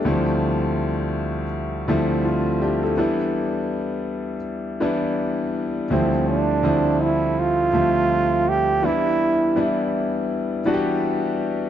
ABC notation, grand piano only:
X:1
M:4/4
L:1/16
Q:"Swing 16ths" 1/4=82
K:Ddor
V:1 name="Grand piano"
D z8 z3 [CF]2 [DG] [EA]- | [EA] z12 z3 | z16 | z16 |]
V:2 name="Grand piano"
[D,,E,F,G,A,CE]8 z2 [D,,F,G,A,CE]6 | [E,G,B,DE]8 z2 [E,G,B,DE]6 | [D,,E,F,G,A,CE]4 [D,,F,G,A,CE]6 [D,,F,G,A,Ce]6 | [E,G,B,DE]4 [E,G,B,DE]6 [E,G,B,D^FG]6 |]